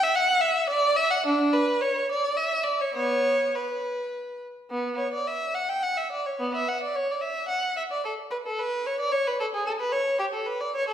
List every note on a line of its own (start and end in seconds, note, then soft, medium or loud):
0.03 0.16 E5 medium
0.15 0.42 F#5 loud
0.41 0.69 E5 medium
0.70 0.96 D5 loud
0.96 1.11 E5 loud
1.11 1.25 F#5 medium
1.26 1.53 D4 loud
1.53 1.81 B4 medium
1.81 2.09 C#5 medium
2.11 2.38 D5 medium
2.37 2.65 E5 medium
2.64 2.79 D5 medium
2.81 2.93 C#5 medium
2.94 3.50 B3 medium
2.94 3.53 C#5 medium
3.55 4.41 B4 medium
4.71 4.97 B3 medium
4.97 5.11 C#5 medium
5.13 5.26 D5 medium
5.27 5.54 E5 medium
5.55 5.68 F#5 medium
5.69 5.82 G5 medium
5.83 5.96 F#5 medium
5.97 6.11 E5 medium
6.12 6.25 D5 medium
6.26 6.40 C#5 medium
6.40 6.54 B3 medium
6.55 6.68 E5 medium
6.68 6.82 F#5 medium
6.83 6.96 D5 medium
6.96 7.09 C#5 medium
7.11 7.24 D5 medium
7.21 7.50 E5 medium
7.48 7.76 F#5 medium
7.77 7.82 E5 medium
7.92 8.05 D5 medium
8.05 8.13 A4 medium
8.31 8.37 B4 medium
8.47 8.60 A4 medium
8.60 8.87 B4 medium
8.86 9.00 C#5 medium
9.00 9.14 D5 medium
9.12 9.26 C#5 medium
9.27 9.41 B4 medium
9.40 9.46 A4 medium
9.55 9.68 G#4 medium
9.66 9.72 A4 medium
9.80 9.94 B4 medium
9.92 10.20 C#5 medium
10.19 10.25 G4 medium
10.34 10.48 A4 medium
10.46 10.61 B4 medium
10.61 10.75 D5 medium
10.76 10.89 C#5 medium
10.88 10.94 A4 medium